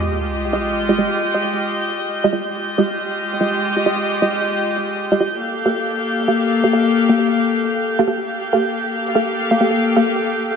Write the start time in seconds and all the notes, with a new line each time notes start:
Already playing: G#3 F4 G4 D#5 G6, sub drop
0.53 G#3 F4 G4 D#5
0.89 G#3 F4 G4 D#5
0.98 G#3 F4 G4 D#5
1.34 G#3 F4 G4 D#5
2.24 G#3 F4 G4 D#5
2.32 G#3 F4 G4 D#5
2.50 G#3 F4 G4 D#5
2.78 G#3 F4 G4 D#5
3.40 G#3 F4 G4 D#5
3.76 G#3 F4 G4 D#5
3.86 G#3 F4 G4 D#5
4.22 G#3 F4 G4 D#5
5.12 G#3 F4 G4 D#5
5.20 G#3 F4 G4 D#5
5.38 A#3 G4 A4 F5
5.66 A#3 G4 A4 F5
6.28 A#3 G4 A4 F5
6.64 A#3 G4 A4 F5
6.73 A#3 G4 A4 F5
7.09 A#3 G4 A4 F5
7.99 A#3 G4 A4 F5
8.07 A#3 G4 A4 F5
8.25 A#3 G4 A4 F5
8.53 A#3 G4 A4 F5
9.15 A#3 G4 A4 F5
9.51 A#3 G4 A4 F5
9.61 A#3 G4 A4 F5
9.96 A#3 G4 A4 F5